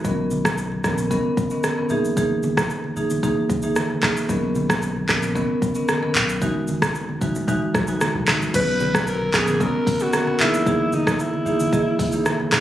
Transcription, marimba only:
0.04 0.54 D#3 medium
0.04 0.54 B3 medium
0.04 0.54 C#4 medium
0.04 0.54 A#4 medium
0.84 1.00 D#3 medium
0.84 1.00 B3 medium
0.84 1.00 C#4 medium
0.84 1.00 A#4 medium
1.11 1.48 D#3 medium
1.11 1.48 B3 medium
1.11 1.48 C#4 medium
1.11 1.48 A#4 loud
1.51 1.66 D#3 medium
1.51 1.66 B3 medium
1.51 1.66 C#4 medium
1.51 1.66 A#4 medium
1.77 1.92 D#3 medium
1.77 1.92 B3 medium
1.77 1.93 C#4 medium
1.77 1.93 A#4 medium
1.90 2.15 E3 medium
1.90 2.15 A#3 medium
1.90 2.15 D#4 medium
1.90 2.15 G#4 loud
2.17 2.66 E3 medium
2.17 2.66 A#3 medium
2.17 2.66 D#4 medium
2.17 2.66 G#4 loud
2.96 3.12 E3 medium
2.96 3.12 A#3 medium
2.96 3.12 D#4 medium
2.96 3.12 G#4 medium
3.23 3.60 E3 medium
3.23 3.60 A#3 medium
3.23 3.60 D#4 medium
3.23 3.60 G#4 loud
3.63 3.78 E3 medium
3.63 3.78 A#3 medium
3.63 3.78 D#4 medium
3.63 3.78 G#4 medium
4.02 4.18 E3 medium
4.02 4.18 A#3 medium
4.02 4.18 D#4 medium
4.02 4.18 G#4 medium
4.29 4.78 D#3 medium
4.29 4.78 B3 medium
4.29 4.78 C#4 medium
4.29 4.78 A#4 loud
5.09 5.24 D#3 medium
5.09 5.24 B3 medium
5.09 5.25 C#4 medium
5.09 5.25 A#4 medium
5.35 5.72 D#3 medium
5.35 5.72 B3 medium
5.35 5.73 C#4 medium
5.35 5.73 A#4 loud
5.75 5.90 D#3 medium
5.75 5.90 B3 medium
5.75 5.91 C#4 medium
5.75 5.91 A#4 medium
6.02 6.17 D#3 medium
6.02 6.17 B3 medium
6.02 6.17 C#4 medium
6.02 6.17 A#4 medium
6.42 6.91 E3 medium
6.42 6.91 G#3 medium
6.42 6.91 D#4 medium
6.42 6.91 F#4 loud
7.21 7.37 E3 medium
7.21 7.37 G#3 medium
7.21 7.37 D#4 medium
7.21 7.37 F#4 medium
7.48 7.85 E3 loud
7.48 7.85 G#3 medium
7.48 7.85 D#4 medium
7.48 7.85 F#4 loud
7.88 8.03 E3 medium
7.88 8.03 G#3 medium
7.88 8.03 D#4 medium
7.88 8.03 F#4 medium
8.27 8.43 E3 medium
8.27 8.43 G#3 medium
8.27 8.43 D#4 medium
8.27 8.43 F#4 medium
8.54 9.03 D#3 medium
8.54 9.03 B3 medium
8.54 9.03 C#4 medium
8.54 9.03 B4 loud
9.34 9.49 D#3 medium
9.34 9.49 B3 medium
9.34 9.49 C#4 medium
9.34 9.50 A#4 medium
9.60 9.97 D#3 loud
9.60 9.97 B3 medium
9.60 9.97 C#4 medium
9.60 9.97 A#4 loud
10.00 10.15 D#3 medium
10.00 10.15 B3 medium
10.00 10.15 C#4 medium
10.00 10.15 A#4 medium
10.27 10.42 D#3 medium
10.27 10.42 B3 medium
10.27 10.42 C#4 medium
10.27 10.42 A#4 medium
10.39 10.64 E3 loud
10.39 10.64 A#3 medium
10.39 10.64 D#4 medium
10.39 10.64 G#4 loud
10.66 11.15 E3 medium
10.66 11.15 A#3 medium
10.66 11.16 D#4 medium
10.66 11.16 G#4 loud
11.46 11.62 E3 medium
11.46 11.62 A#3 medium
11.46 11.62 D#4 medium
11.46 11.62 G#4 medium
11.72 12.09 E3 medium
11.72 12.10 A#3 medium
11.72 12.10 G#4 loud
11.72 12.10 D#5 medium
12.13 12.28 E3 medium
12.13 12.28 A#3 medium
12.13 12.28 D#4 medium
12.13 12.28 G#4 medium
12.52 12.60 E3 medium
12.52 12.60 A#3 medium
12.52 12.60 D#4 medium
12.52 12.60 G#4 medium

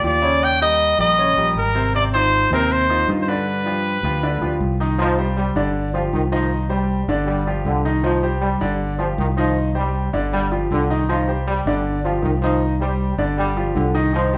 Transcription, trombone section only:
4.99 5.19 F3 loud
5.37 5.69 G3 medium
5.94 6.04 F3 medium
6.13 6.23 D#3 medium
6.32 6.52 F3 medium
6.70 7.02 G3 medium
7.26 7.47 G3 medium
7.66 7.86 D3 medium
8.04 8.24 F3 medium
8.42 8.74 G3 medium
8.99 9.09 F3 medium
9.18 9.28 D#3 medium
9.37 9.57 F3 medium
9.77 10.08 G3 medium
10.33 10.53 G3 medium
10.71 10.91 D3 medium
11.09 11.29 F3 medium
11.48 11.79 G3 medium
12.05 12.14 F3 medium
12.22 12.32 D#3 medium
12.42 12.62 F3 medium
12.80 13.12 G3 medium
13.38 13.57 G3 medium
13.75 13.95 D3 medium
14.14 14.34 F3 loud

